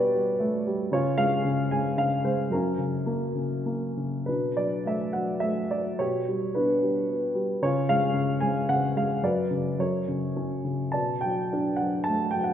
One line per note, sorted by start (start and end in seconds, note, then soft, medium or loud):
0.00 0.88 B2 soft
0.00 0.13 G3 soft
0.00 0.89 B3 soft
0.00 0.94 G4 soft
0.00 0.94 B4 soft
0.00 0.93 C#5 soft
0.00 0.94 D5 medium
0.15 0.65 G3 soft
0.40 0.91 A3 soft
0.67 0.92 G3 soft
0.92 1.43 C#3 soft
0.92 1.70 F4 medium
0.92 1.18 C#5 medium
1.18 1.70 G#3 soft
1.18 1.68 F5 medium
1.45 1.96 C#3 soft
1.71 2.22 G#3 soft
1.71 1.96 G#5 medium
1.98 2.50 C#3 soft
1.98 2.23 F5 medium
2.24 2.51 G#3 soft
2.24 2.53 C5 soft
2.50 4.22 F#2 soft
2.50 3.63 A#4 soft
2.54 3.64 C#4 soft
2.78 3.34 C#3 soft
3.06 3.64 A#3 soft
3.35 3.96 C#3 soft
3.66 4.25 A#3 soft
3.97 4.26 C#3 soft
4.26 5.95 B2 soft
4.26 5.11 D4 soft
4.26 4.57 B4 soft
4.57 5.14 F#3 soft
4.57 4.87 D5 soft
4.85 5.41 A3 soft
4.85 5.13 E5 soft
5.13 5.71 F#3 soft
5.13 5.43 F#5 soft
5.40 5.98 A3 soft
5.40 5.71 E5 medium
5.71 5.99 F#3 soft
5.71 5.97 D5 soft
5.99 7.58 B2 soft
5.99 6.79 G4 soft
5.99 6.57 C#5 medium
6.28 6.81 G3 soft
6.55 7.07 B3 soft
6.55 7.32 D4 soft
6.55 7.31 B4 soft
6.83 7.33 G3 soft
7.08 7.60 B3 soft
7.35 7.61 G3 soft
7.62 8.12 C#3 soft
7.62 8.40 F4 soft
7.62 7.87 C#5 medium
7.89 8.40 G#3 soft
7.89 8.44 F5 medium
8.14 8.68 C#3 soft
8.40 8.94 G#3 soft
8.40 8.67 G#5 medium
8.69 9.22 C#3 soft
8.69 8.97 F#5 medium
8.96 9.23 G#3 soft
8.96 9.25 F5 medium
9.23 9.77 F#2 soft
9.23 9.76 B4 soft
9.23 9.81 D5 soft
9.51 9.78 C#3 soft
9.78 10.91 F#2 soft
9.78 10.62 A#4 soft
9.78 10.62 C#5 soft
10.08 10.63 C#3 soft
10.36 10.93 C#4 soft
10.64 10.93 C#3 soft
10.92 12.53 B2 soft
10.92 11.76 D5 soft
10.92 11.23 A5 soft
11.21 11.80 F#3 soft
11.21 11.75 G5 medium
11.53 12.53 D4 soft
11.76 12.07 F#5 soft
11.82 12.33 F#3 soft
12.04 12.31 A5 medium
12.08 12.53 A3 soft
12.31 12.53 F#3 soft
12.31 12.45 G5 medium
12.44 12.53 F#5 medium